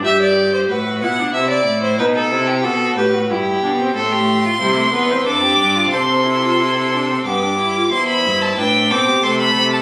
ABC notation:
X:1
M:3/4
L:1/16
Q:1/4=92
K:Em
V:1 name="Violin"
z12 | z12 | [K:C] c'8 d'4 | c'8 d'4 |
c' b2 a g2 d'2 c' b2 a |]
V:2 name="Violin"
e d2 c B2 f2 e d2 c | B A2 G A2 B2 G4 | [K:C] A G2 F E2 B2 A G2 F | A8 G4 |
c4 B2 A G A4 |]
V:3 name="Viola"
G4 F2 E D E4 | ^D2 E2 F2 G F E2 =D C | [K:C] A,4 G, A, B, C D4 | C2 E F E2 D C B, D E F |
E4 D2 C2 A,4 |]
V:4 name="Cello" clef=bass
G,,4 A,,2 B,,2 C,2 A,,2 | B,,2 C,2 B,,2 A,,2 G,,2 B,,2 | [K:C] A,,4 C,2 E,,2 F,,2 G,,2 | C,8 G,,4 |
E,,2 G,,2 A,,2 B,,2 C,2 C,2 |]